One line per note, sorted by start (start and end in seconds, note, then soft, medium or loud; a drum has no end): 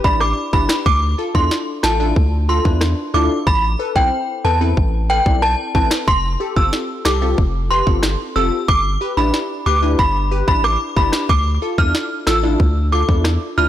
0.04 0.34 A1 medium
0.04 0.17 D4 medium
0.04 0.17 E4 medium
0.04 0.17 G4 medium
0.04 0.18 D5 medium
0.04 0.16 B5 medium
0.04 kick medium
0.20 0.32 D6 medium
0.20 cross-stick loud
0.53 0.68 G1 loud
0.53 0.66 D4 medium
0.53 0.66 E4 medium
0.53 0.66 G4 medium
0.53 0.66 B4 medium
0.53 0.64 B5 medium
0.53 kick medium
0.69 cross-stick medium
0.69 snare loud
0.86 1.15 D2 loud
0.86 0.97 D6 loud
0.86 kick loud
1.18 1.25 F4 medium
1.18 1.25 A4 medium
1.34 1.49 E2 medium
1.34 1.48 D4 medium
1.34 1.48 E4 medium
1.34 1.48 F4 medium
1.34 1.48 A4 medium
1.34 1.46 C6 medium
1.34 kick medium
1.51 snare medium
1.83 2.13 A1 medium
1.83 1.90 F4 medium
1.83 1.90 A4 medium
1.83 1.95 A5 medium
1.83 cross-stick loud
1.83 snare loud
2.00 2.13 D4 medium
2.00 2.13 E4 medium
2.00 2.13 F4 medium
2.00 2.13 A4 medium
2.16 2.60 D2 loud
2.16 kick loud
2.49 2.55 F4 medium
2.49 2.56 A4 medium
2.49 2.60 C6 medium
2.65 2.94 E2 medium
2.65 2.78 D4 medium
2.65 2.78 E4 medium
2.65 2.78 F4 medium
2.65 2.78 B4 medium
2.65 kick loud
2.81 cross-stick medium
2.81 cross-stick loud
2.81 snare loud
3.14 3.29 D2 medium
3.14 3.27 D4 medium
3.14 3.27 E4 medium
3.14 3.27 F4 medium
3.14 3.27 A4 medium
3.14 3.25 D6 medium
3.47 3.76 A1 loud
3.47 3.58 B5 loud
3.47 kick loud
3.79 3.86 A4 medium
3.79 3.86 B4 medium
3.95 4.10 B1 medium
3.95 4.09 C4 medium
3.95 4.09 E4 medium
3.95 4.09 A4 medium
3.95 4.09 C5 medium
3.95 4.07 G5 medium
3.95 kick medium
4.44 4.74 E2 medium
4.44 4.51 A4 medium
4.44 4.51 B4 medium
4.44 4.56 A5 medium
4.61 4.74 C4 medium
4.61 4.74 E4 medium
4.61 4.74 A4 medium
4.61 4.74 B4 medium
4.77 5.21 A1 loud
4.77 kick medium
5.09 5.16 A4 medium
5.09 5.16 B4 medium
5.09 5.21 G5 medium
5.26 5.55 B1 medium
5.26 5.39 C4 medium
5.26 5.39 E4 medium
5.26 5.39 A4 medium
5.26 5.39 D5 medium
5.26 kick loud
5.42 5.54 A5 medium
5.42 cross-stick loud
5.75 5.90 A1 loud
5.75 5.88 C4 medium
5.75 5.88 E4 medium
5.75 5.88 A4 medium
5.75 5.88 B4 medium
5.75 5.86 A5 medium
5.75 kick loud
5.91 cross-stick medium
5.91 snare loud
6.08 6.37 F1 loud
6.08 6.19 C6 loud
6.08 kick loud
6.40 6.47 G4 medium
6.40 6.47 A4 medium
6.56 6.71 G1 medium
6.56 6.70 C4 medium
6.56 6.70 F4 medium
6.56 6.70 G4 medium
6.56 6.70 A4 medium
6.56 6.68 E6 medium
6.56 kick medium
6.73 snare medium
7.05 7.35 C2 medium
7.05 7.12 G4 medium
7.05 7.12 A4 medium
7.05 7.17 D6 medium
7.05 cross-stick loud
7.05 snare loud
7.22 7.35 C4 medium
7.22 7.35 F4 medium
7.22 7.35 G4 medium
7.22 7.35 A4 medium
7.38 7.82 F1 medium
7.38 kick loud
7.71 7.77 G4 medium
7.71 7.77 B4 medium
7.71 7.82 C6 medium
7.87 8.16 G1 medium
7.87 8.00 C4 medium
7.87 8.00 F4 medium
7.87 8.00 G4 medium
7.87 8.00 A4 medium
7.87 kick loud
8.03 cross-stick loud
8.03 cross-stick medium
8.03 snare loud
8.36 8.51 F1 medium
8.36 8.49 C4 medium
8.36 8.49 F4 medium
8.36 8.49 G4 medium
8.36 8.49 A4 medium
8.36 8.47 E6 medium
8.68 8.98 G1 loud
8.68 8.80 D6 loud
8.68 kick loud
9.01 9.08 G4 medium
9.01 9.08 B4 medium
9.17 9.32 A1 medium
9.17 9.30 D4 medium
9.17 9.30 E4 medium
9.17 9.31 G4 medium
9.17 9.31 B4 medium
9.17 9.29 B5 medium
9.34 snare medium
9.66 9.96 D2 medium
9.66 9.73 G4 medium
9.66 9.73 B4 medium
9.66 9.77 D6 medium
9.82 9.96 D4 medium
9.82 9.96 E4 medium
9.82 9.96 G4 medium
9.82 9.96 B4 medium
9.99 10.43 G1 loud
9.99 10.10 B5 medium
9.99 kick medium
10.31 10.38 G4 medium
10.31 10.38 B4 medium
10.48 10.77 A1 medium
10.48 10.61 D4 medium
10.48 10.61 E4 medium
10.48 10.61 G4 medium
10.48 10.61 B4 medium
10.48 10.59 B5 medium
10.48 kick medium
10.64 10.75 D6 medium
10.64 cross-stick loud
10.96 11.11 G1 medium
10.96 11.10 D4 medium
10.96 11.10 E4 medium
10.96 11.10 G4 medium
10.96 11.10 B4 medium
10.96 11.08 B5 medium
10.96 kick medium
11.12 cross-stick medium
11.12 snare loud
11.29 11.59 D2 loud
11.29 11.41 D6 loud
11.29 kick loud
11.62 11.68 F4 medium
11.62 11.69 A4 medium
11.78 11.93 E2 medium
11.78 11.91 D4 medium
11.78 11.91 E4 medium
11.78 11.91 F4 medium
11.78 11.91 A4 medium
11.78 11.89 F6 medium
11.78 kick medium
11.95 snare medium
12.27 12.56 A1 medium
12.27 12.34 F4 medium
12.27 12.34 A4 medium
12.27 12.38 E6 medium
12.27 cross-stick loud
12.27 snare loud
12.43 12.56 D4 medium
12.43 12.57 E4 medium
12.43 12.57 F4 medium
12.43 12.57 A4 medium
12.60 13.04 D2 loud
12.60 kick medium
12.92 12.99 F4 medium
12.92 12.99 A4 medium
12.92 13.04 D6 medium
13.08 13.38 E2 loud
13.08 13.22 D4 medium
13.08 13.22 E4 medium
13.08 13.22 F4 medium
13.08 13.22 A4 medium
13.08 kick loud
13.24 cross-stick medium
13.24 snare loud
13.57 13.69 D2 medium
13.57 13.69 D4 medium
13.57 13.69 E4 medium
13.57 13.69 F4 medium
13.57 13.69 B4 medium
13.57 13.69 F6 medium